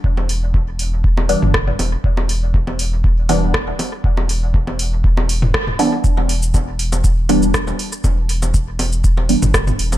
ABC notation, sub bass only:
X:1
M:4/4
L:1/16
Q:1/4=120
K:Em
V:1 name="Sub bass" clef=bass
E,,,8- E,,,2 z G,,,2 z E,,, z | E,,,12- E,,, z3 | E,,,12- E,,, z3 | E,,,12- E,,, z3 |
E,,,8- E,,,2 z G,,,2 z E,,, z |]